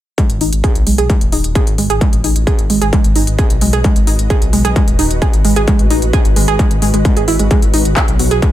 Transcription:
0.18 synth arpeggio sound G#3, ambient pad F#4, kick, closed hi-hat
0.30 detuned saw bass G#1, closed hi-hat
0.41 detuned saw bass G#1, synth arpeggio sound D#4, open hi-hat
0.53 detuned saw bass G#1, ambient pad B4, closed hi-hat
0.64 synth arpeggio sound G#4, kick, closed hi-hat
0.75 detuned saw bass B1, closed hi-hat
0.87 detuned saw bass B1, synth arpeggio sound G#3, open hi-hat
0.98 detuned saw bass B1, synth arpeggio sound G#4, closed hi-hat
1.10 synth arpeggio sound G#3, kick, closed hi-hat
1.21 detuned saw bass D#1, closed hi-hat
1.32 detuned saw bass D#1, synth arpeggio sound D#4, open hi-hat
1.44 detuned saw bass D#1, closed hi-hat
1.52 synth arpeggio sound G#4, ambient pad D#5, kick, closed hi-hat
1.67 detuned saw bass G#1, closed hi-hat
1.78 detuned saw bass G#1, synth arpeggio sound G#3, open hi-hat
1.90 detuned saw bass G#1, synth arpeggio sound G#4, closed hi-hat
2.01 synth arpeggio sound G#3, kick, closed hi-hat
2.13 detuned saw bass A1, closed hi-hat
2.24 detuned saw bass A1, synth arpeggio sound D#4, open hi-hat
2.36 detuned saw bass A1, closed hi-hat
2.47 synth arpeggio sound G#4, kick, closed hi-hat
2.59 detuned saw bass G#1, closed hi-hat
2.70 detuned saw bass G#1, synth arpeggio sound G#3, open hi-hat
2.81 detuned saw bass G#1, synth arpeggio sound G#4, closed hi-hat
2.93 synth arpeggio sound G#3, kick, closed hi-hat
3.04 detuned saw bass G#1, closed hi-hat
3.16 detuned saw bass G#1, synth arpeggio sound D#4, open hi-hat
3.27 detuned saw bass G#1, closed hi-hat
3.38 synth arpeggio sound G#4, kick, closed hi-hat
3.50 detuned saw bass B1, closed hi-hat
3.61 detuned saw bass B1, synth arpeggio sound G#3, open hi-hat
3.73 detuned saw bass B1, synth arpeggio sound G#4, closed hi-hat
3.84 synth arpeggio sound G#3, kick, closed hi-hat
3.96 detuned saw bass G#1, closed hi-hat
4.07 detuned saw bass G#1, synth arpeggio sound D#4, open hi-hat
4.19 detuned saw bass G#1, closed hi-hat
4.30 synth arpeggio sound G#4, kick, closed hi-hat
4.42 detuned saw bass B1, closed hi-hat
4.53 detuned saw bass B1, synth arpeggio sound G#3, open hi-hat
4.65 detuned saw bass B1, synth arpeggio sound G#4, closed hi-hat
4.76 synth arpeggio sound G#3, kick, closed hi-hat
4.88 detuned saw bass D#1, closed hi-hat
4.99 detuned saw bass D#1, synth arpeggio sound D#4, open hi-hat
5.11 detuned saw bass D#1, closed hi-hat
5.22 synth arpeggio sound G#4, kick, closed hi-hat
5.33 detuned saw bass G#1, closed hi-hat
5.45 detuned saw bass G#1, synth arpeggio sound G#3, open hi-hat
5.56 detuned saw bass G#1, synth arpeggio sound G#4, closed hi-hat
5.68 synth arpeggio sound G#3, kick, closed hi-hat
5.79 detuned saw bass A1, closed hi-hat
5.90 detuned saw bass A1, synth arpeggio sound D#4, open hi-hat
6.02 detuned saw bass A1, closed hi-hat
6.13 synth arpeggio sound G#4, kick, closed hi-hat
6.25 detuned saw bass G#1, closed hi-hat
6.36 detuned saw bass G#1, synth arpeggio sound G#3, open hi-hat
6.48 detuned saw bass G#1, synth arpeggio sound G#4, closed hi-hat
6.59 synth arpeggio sound G#3, kick, closed hi-hat
6.71 detuned saw bass G#1, closed hi-hat
6.82 detuned saw bass G#1, synth arpeggio sound G#3, open hi-hat
6.94 detuned saw bass G#1, synth arpeggio sound G#3, closed hi-hat
7.05 synth arpeggio sound G#3, kick, closed hi-hat
7.17 detuned saw bass G#1, synth arpeggio sound G#4, closed hi-hat
7.28 detuned saw bass G#1, synth arpeggio sound E4, open hi-hat
7.39 detuned saw bass G#1, synth arpeggio sound G#3, closed hi-hat
7.51 synth arpeggio sound G#3, kick, closed hi-hat
7.62 detuned saw bass G#1, closed hi-hat
7.74 detuned saw bass G#1, synth arpeggio sound D#4, open hi-hat
7.85 detuned saw bass G#1, closed hi-hat
7.96 synth arpeggio sound G#4, kick, clap, closed hi-hat
8.08 detuned saw bass B1, closed hi-hat
8.19 detuned saw bass B1, synth arpeggio sound F#3, open hi-hat
8.31 detuned saw bass B1, synth arpeggio sound G#4, closed hi-hat
8.42 synth arpeggio sound G#3, kick, closed hi-hat

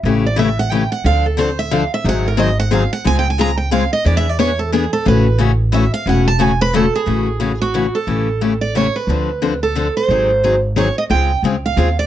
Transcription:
0.03 upright bass A1, steel-string acoustic guitar C#3 E3 A3 C#4 G4
0.26 steel-string acoustic guitar D5
0.36 steel-string acoustic guitar C#3 E3 A3 C#4 G4 E5
0.59 steel-string acoustic guitar F#5
0.71 steel-string acoustic guitar C#3 E3 A3 C#4 G4 G5
0.92 steel-string acoustic guitar F#5
1.04 upright bass D2, steel-string acoustic guitar D3 F3 C4 D4 A4 F5
1.26 steel-string acoustic guitar A4
1.37 steel-string acoustic guitar D3 F3 C4 D4 A4 C5
1.59 steel-string acoustic guitar E5
1.71 steel-string acoustic guitar D3 F3 C4 D4 A4 F5
1.94 steel-string acoustic guitar E5
2.04 upright bass G#1, steel-string acoustic guitar D#3 F#3 C4 D#4 G#4
2.09 steel-string acoustic guitar F#5
2.28 steel-string acoustic guitar A#4
2.37 steel-string acoustic guitar D#3 F#3 C4 D#4 G#4 D#5
2.60 steel-string acoustic guitar F#5
2.71 steel-string acoustic guitar D#3 F#3 C4 D#4 G#4 F5
2.93 steel-string acoustic guitar F#5
3.04 upright bass C#2, steel-string acoustic guitar C#3 G#3 C4 F4 G#4 G#5
3.19 steel-string acoustic guitar G5
3.30 steel-string acoustic guitar G#5
3.38 steel-string acoustic guitar C#3 G#3 C4 F4 G#4 A#5
3.57 steel-string acoustic guitar G5
3.71 steel-string acoustic guitar C#3 G#3 C4 F4 G#4 F5
3.93 steel-string acoustic guitar D#5
4.05 upright bass E2, steel-string acoustic guitar E3 B3 D4 G#4 D5
4.17 steel-string acoustic guitar E5
4.29 steel-string acoustic guitar D5
4.39 steel-string acoustic guitar E3 B3 D4 G#4 C#5
4.59 steel-string acoustic guitar A4
4.72 steel-string acoustic guitar E3 B3 D4 G#4
4.93 steel-string acoustic guitar A4
5.05 upright bass A1, steel-string acoustic guitar C#3 E3 A3 C#4 F#4 B4
5.38 steel-string acoustic guitar C#3 E3 A3 C#4 F#4
5.72 steel-string acoustic guitar C#3 E3 A3 C#4 F#4 E5
5.94 steel-string acoustic guitar F5
6.06 upright bass E1, steel-string acoustic guitar C#3 E3 A3 C#4 F#4 F#5
6.28 steel-string acoustic guitar A5
6.39 steel-string acoustic guitar C#3 E3 A3 C#4 F#4 G#5
6.61 steel-string acoustic guitar B4 B5
6.74 steel-string acoustic guitar C#3 E3 A3 C#4 F#4 A4 A5
6.95 steel-string acoustic guitar G#4
7.06 upright bass A1, steel-string acoustic guitar C#3 E3 A3 C#4 F#4
7.40 steel-string acoustic guitar C#3 E3 A3 C#4 F#4
7.62 steel-string acoustic guitar F#4
7.74 steel-string acoustic guitar C#3 E3 A3 C#4 F#4
7.95 steel-string acoustic guitar A4
8.07 upright bass A1, steel-string acoustic guitar C#3 E3 A3 C#4 G4
8.41 steel-string acoustic guitar C#3 E3 A3 C#4 G4
8.61 steel-string acoustic guitar D5
8.75 steel-string acoustic guitar C#3 E3 A3 C#4 G4 C#5
8.96 steel-string acoustic guitar B4
9.07 upright bass D2, steel-string acoustic guitar D3 F3 C4 D4 A4
9.42 steel-string acoustic guitar D3 F3 C4 D4 A4
9.63 steel-string acoustic guitar A4
9.75 steel-string acoustic guitar D3 F3 C4 D4 A4
9.97 steel-string acoustic guitar C5
10.08 upright bass G#1, steel-string acoustic guitar D#3 F#3 C4 D#4 G#4
10.44 steel-string acoustic guitar D#3 F#3 C4 D#4 G#4
10.76 steel-string acoustic guitar D#3 F#3 C4 D#4 G#4 C#5
10.98 steel-string acoustic guitar D#5
11.10 upright bass C#2, steel-string acoustic guitar C#3 G#3 C4 F4 G#4 G5
11.43 upright bass C#2, steel-string acoustic guitar C#3 G#3 C4 F4 G#4
11.66 steel-string acoustic guitar F5
11.77 upright bass D#2, steel-string acoustic guitar C#3 G#3 C4 F4 G#4
11.99 steel-string acoustic guitar D5

